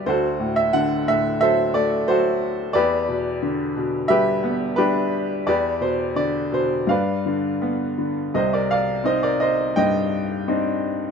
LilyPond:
<<
  \new Staff \with { instrumentName = "Upright piano" } { \time 4/4 \key e \minor \tempo 4 = 87 << { c''8. e''16 fis''8 e''8 e''8 d''8 c''4 | d''2 e''4 b'4 | d''8 c''8 d''8 c''8 f''4. r8 | \key c \minor ees''16 d''16 f''8 ees''16 d''16 ees''8 g''4 r4 | } \\ { <fis' a'>2 <a' c''>4 <fis' a'>4 | <g' b'>2 <g' b'>4 <d' g'>4 | <g' b'>2 <b' d''>2 | c''16 bes'16 d''8 c''16 bes'16 c''8 ees''4 r4 | } >> }
  \new Staff \with { instrumentName = "Upright piano" } { \clef bass \time 4/4 \key e \minor d,8 a,8 d8 a,8 fis8 a8 fis4 | e,8 b,8 d8 b,8 g8 b8 g4 | e,8 b,8 d8 b,8 g,8 d8 b8 d8 | \key c \minor <c, c>4 <c' ees'>4 g,4 <c' d' ees'>4 | }
>>